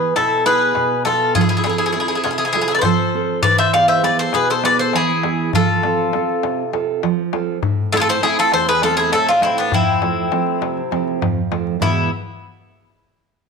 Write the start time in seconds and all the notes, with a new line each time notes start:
Already playing: B3 E4 G#4 B4
0.01 darbuka tek
0.16 B2 E4 A4, darbuka tek
0.45 B3 E4 G#4 B4, darbuka tek
0.75 B2, darbuka tek
1.05 B3 F4 A4 B4 E5, darbuka tek
1.35 F3 F4 G#4, darbuka dum
1.41 E4 G#4
1.49 E4 G#4
1.57 E4 G#4
1.64 C4 E4 F4 G#4 A4, darbuka tek
1.70 E4 G#4
1.78 E4 G#4
1.86 E4 G#4
1.93 C4 E4 F4 G#4 A4
2.00 E4 G#4
2.08 E4 G#4, darbuka tek
2.15 E4 G#4
2.24 C3 F4 G#4, darbuka tek
2.31 E4 G#4
2.38 E4 G#4
2.45 E4 G#4
2.53 C4 E4 F4 G#4 A4, darbuka tek
2.61 E4 G#4
2.68 E4 G#4, darbuka tek
2.75 D5
2.79 B4 C5
2.83 F3 A4, darbuka tek, darbuka dum
3.15 C4 F4 A4
3.43 E3 B4 D5, darbuka dum
3.58 C5 E5
3.73 B3 E4 G#4 D5 F5, darbuka tek
3.88 C5 E5, darbuka tek
4.03 B3 E4 G#4 B4 D5, darbuka tek
4.18 A4 C5, darbuka tek
4.33 B2 G#4 B4, darbuka tek
4.50 A4 C5
4.63 B3 E4 G#4 B4 D5, darbuka tek
4.79 A4 C5
4.93 E3 E4 G#4, darbuka tek
5.23 B3 E4 G#4, darbuka tek
5.53 F3 F4 A4, darbuka dum
5.83 C4 F4 A4, darbuka tek
5.99 darbuka tek
6.13 C4 F4 A4, darbuka tek
6.29 darbuka tek
6.43 C3, darbuka tek
6.73 C4 F4 A4, darbuka tek
7.03 F3, darbuka tek
7.33 C4 F4 A4, darbuka tek
7.63 A2, darbuka dum
7.92 A3 C4 E4 F4 A4, darbuka tek
7.97 F4 G#4
8.01 A4
8.08 A4 C5, darbuka tek
8.23 A3 C4 E4 G#4, darbuka tek
8.37 F4 A4, darbuka tek
8.52 E2 A4 C5, darbuka tek
8.69 G#4 B4
8.82 A3 C4 E4 F4 A4, darbuka tek
8.97 E4 G#4
9.12 A2 E4 A4, darbuka tek
9.29 D4 F4
9.41 A3 C4 E4, darbuka tek
9.58 B3 D4
9.72 F2 C4 E4, darbuka dum
10.02 F3 A3 C4, darbuka tek
10.17 darbuka tek
10.32 F3 A3 C4, darbuka tek
10.47 darbuka tek
10.61 C3, darbuka tek
10.77 darbuka tek
10.91 F3 A3 C4, darbuka tek
11.08 darbuka tek
11.22 F2, darbuka tek, darbuka dum
11.51 F3 A3 C4, darbuka tek
11.67 darbuka tek
11.80 E2 B2 E3 G#3 B3 E4, darbuka dum